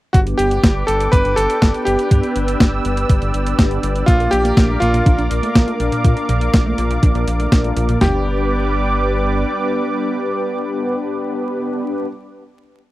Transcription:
0.13 G1 B3 D4 F#4 G4 B4 D5 G5 D6, kick, closed hi-hat
0.27 closed hi-hat
0.38 G1 G4, closed hi-hat
0.51 closed hi-hat
0.64 G1, kick, snare, closed hi-hat
0.87 G1 A4, closed hi-hat
1.00 closed hi-hat
1.12 G1 B4, kick, closed hi-hat
1.25 G1, closed hi-hat
1.36 G1 A4, closed hi-hat
1.50 closed hi-hat
1.62 G1 B3 D4 G4 B4, kick, snare, closed hi-hat
1.74 closed hi-hat
1.85 G1 G4, closed hi-hat
1.99 closed hi-hat
2.11 G2 B3 D4 G4 B4 E6, kick, closed hi-hat
2.23 closed hi-hat
2.36 G1, closed hi-hat
2.48 closed hi-hat
2.60 G1, kick, snare, closed hi-hat
2.85 G1, closed hi-hat
2.97 closed hi-hat
3.09 G1, kick, closed hi-hat
3.22 G1, closed hi-hat
3.34 G1, closed hi-hat
3.46 closed hi-hat
3.59 G1 B3 D4 G4 B4, kick, snare, closed hi-hat
3.71 closed hi-hat
3.83 G1, closed hi-hat
3.96 closed hi-hat
4.06 A#1 A#3 D4 F4 A#4 F5 D6, kick, closed hi-hat
4.20 A#4, closed hi-hat
4.31 A#1 A#2 G4, closed hi-hat
4.45 A#3, closed hi-hat
4.57 A#1 A#3, kick, snare, closed hi-hat
4.69 A3
4.80 A#1 A#2 F4, closed hi-hat
4.94 A#2, closed hi-hat
5.06 A#1 D4, kick, closed hi-hat
5.18 A#1 D4, closed hi-hat
5.31 A#1 F4, closed hi-hat
5.43 A3, closed hi-hat
5.55 A#1 A#3 D4 F4 A#4, kick, snare, closed hi-hat
5.68 A3, closed hi-hat
5.80 A#1 A#2, closed hi-hat
5.92 A#2, closed hi-hat
6.04 A#2 A#3 D4 F4 A#4, kick, closed hi-hat
6.17 A#4, closed hi-hat
6.29 A#1 A#2, closed hi-hat
6.41 A#3, closed hi-hat
6.54 A#1 A#3, kick, snare, closed hi-hat
6.66 A3
6.78 A#1 A#2, closed hi-hat
6.90 A#2, closed hi-hat
7.03 A#1 D4, kick, closed hi-hat
7.15 A#1 D4, closed hi-hat
7.27 A#1 F4, closed hi-hat
7.40 A3, closed hi-hat
7.52 A#1 A#3 D4 F4 A#4, kick, snare, closed hi-hat
7.64 A3, closed hi-hat
7.76 A#1 A#2, closed hi-hat
7.89 A#2, closed hi-hat
8.01 G1 G3 B3 D4 G4 B4 D5 D6, snare, floor tom

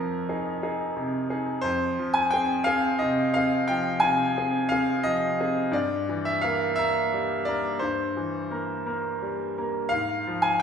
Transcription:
Already playing: F2 F3 A#4
0.29 D#4 G#4
0.62 D#4 G#4
0.97 C3
1.30 D#4 G#4
1.61 F2 C5
1.99 F3
2.14 G#5
2.31 C4 G#4 G5
2.64 C4 G#4 F5
2.99 C3 D#5
3.34 C4 G#4 F5
3.68 F3 G5
4.00 C3 G#5
4.37 C4 G#4
4.69 C4 G#4 F5
5.04 F3 D#5
5.40 C4 G#4
5.72 G2 D5
6.09 E3
6.25 E5
6.41 A#3 A#4 F5
6.76 A#3 A#4 E5
7.13 G3
7.45 A#3 A#4 D5
7.79 G2 C5
8.17 E3
8.51 A#3 A#4
8.86 A#3 A#4
9.22 G3
9.58 A#3 A#4
9.89 G#2 F5
10.27 F3
10.42 G#5

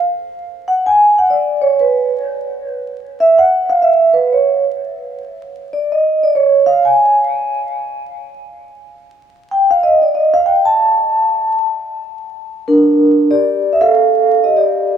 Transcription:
0.68 F#5
0.86 G#5
1.18 F#5
1.30 D5
1.62 C#5
1.80 B4
3.20 E5
3.38 F#5
3.69 F5
3.82 E5
4.13 B4
4.33 C#5
5.73 D5
5.92 D#5
6.23 D5
6.35 C#5
6.66 F5
6.85 G#5
9.51 G5
9.71 F5
9.83 D#5
10.02 D5
10.15 D#5
10.34 F5
10.46 G5
10.65 A5
12.68 D4 A#4
13.31 G4 D5
13.73 E5
13.81 A4 F5
14.44 G4 D#5
14.57 G4 D5

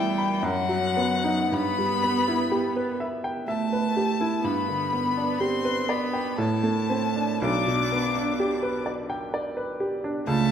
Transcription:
Already playing: E2 B2 G3 B3 E4 B4 E5 G5
0.18 B5
0.43 F#2 F#3 F#5
0.69 F#3
0.97 B3
1.24 D#4
1.51 G2 B3 B5
1.78 G3
2.03 B3
2.28 E4
2.51 G4
2.76 B4
3.00 E5
3.24 G5
3.47 A3 E5 A5
3.73 B4
3.97 G4
4.21 E4
4.43 G2 B3 B5
4.69 D3
4.93 B3
5.17 D4
5.39 C4 G4 C6
5.65 B4
5.88 B3 D5 B5
6.13 G5
6.38 A2 A3 A5
6.63 A3
6.90 C4
7.16 D4
7.42 B1 D4 D6
7.67 B2
7.92 B3
8.16 D4
8.40 G4
8.63 B4
8.86 D5
9.10 G5
9.34 D5
9.57 B4
9.80 G4
10.04 D4
10.26 C#2 A3 A5

